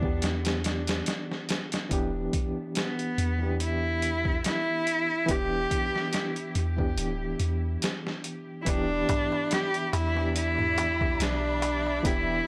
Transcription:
Already playing: 808-style bass E2, reed electric piano B3 D4 G4, cello D4
0.00 reed electric piano E3 B3 D4, kick
0.05 reed electric piano G4
0.22 snare, closed hi-hat
0.45 snare, closed hi-hat
0.64 snare, closed hi-hat
0.87 snare, closed hi-hat
1.06 snare, closed hi-hat
1.31 snare
1.49 snare, closed hi-hat
1.72 snare, closed hi-hat
1.89 808-style bass E1, reed electric piano E3 B3 D4 G4, kick, closed hi-hat
2.33 kick, closed hi-hat
2.75 cello B3, snare, closed hi-hat
2.99 closed hi-hat
3.18 808-style bass E2, closed hi-hat
3.39 reed electric piano E3 B3 D4
3.43 reed electric piano G4
3.60 cello E4, closed hi-hat
4.02 closed hi-hat
4.25 kick
4.44 cello E4, snare, closed hi-hat
4.87 closed hi-hat
5.26 808-style bass E1, reed electric piano E3 B3 D4, kick, closed hi-hat
5.31 reed electric piano G4, cello G4
5.71 kick, closed hi-hat
5.96 snare
6.13 snare, closed hi-hat
6.36 closed hi-hat
6.55 808-style bass E2, closed hi-hat
6.77 reed electric piano E3 B3 D4, kick
6.81 reed electric piano G4
6.97 808-style bass D1, closed hi-hat
7.40 808-style bass E2, closed hi-hat
7.82 snare, closed hi-hat
8.07 snare
8.24 closed hi-hat
8.62 reed electric piano E3, cello E4
8.66 808-style bass E1, reed electric piano B3 D4 G4, cello D4, string section G4 D5 E5 B5, kick, closed hi-hat, darbuka tek
9.09 kick, closed hi-hat, darbuka tek, darbuka dum
9.32 darbuka tek
9.51 cello G4, snare, closed hi-hat, darbuka tek
9.74 closed hi-hat
9.93 808-style bass E2, cello E4, closed hi-hat, darbuka tek
10.15 reed electric piano E3 B3 D4 G4, darbuka tek
10.35 cello E4, closed hi-hat, darbuka tek
10.59 darbuka dum
10.78 closed hi-hat, darbuka tek
11.01 kick, darbuka tek
11.20 808-style bass B1, cello D4, snare, closed hi-hat, darbuka tek
11.62 closed hi-hat, darbuka tek
11.87 darbuka tek
12.03 808-style bass E1, reed electric piano E3 B3 D4 G4, cello E4, kick, closed hi-hat, darbuka tek

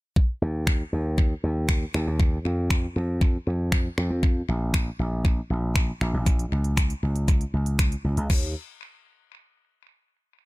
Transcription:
0.16 kick
0.42 slap bass D#2
0.67 finger snap, kick
0.93 slap bass D#2
1.18 kick
1.44 slap bass D#2
1.69 finger snap, kick
1.94 slap bass D#2, finger snap
2.07 slap bass D#2
2.20 kick
2.45 slap bass F2
2.70 finger snap, kick
2.96 slap bass F2
3.21 kick
3.47 slap bass F2
3.72 finger snap, kick
3.98 slap bass F2, finger snap
4.10 slap bass F2
4.23 kick
4.48 slap bass A#1
4.74 finger snap, kick
4.99 slap bass A#1
5.25 kick
5.50 slap bass A#1
5.76 finger snap, kick
6.01 slap bass A#1, finger snap
6.14 slap bass A#1
6.26 kick, closed hi-hat
6.39 closed hi-hat
6.52 slap bass C#2
6.64 closed hi-hat
6.77 finger snap, kick, closed hi-hat
6.90 closed hi-hat
7.03 slap bass C#2
7.16 closed hi-hat
7.28 kick, closed hi-hat
7.41 closed hi-hat
7.54 slap bass C#2
7.66 closed hi-hat
7.79 finger snap, kick, closed hi-hat
7.92 closed hi-hat
8.04 slap bass C#2
8.17 slap bass C#2, closed hi-hat
8.30 slap bass D#2, kick, crash

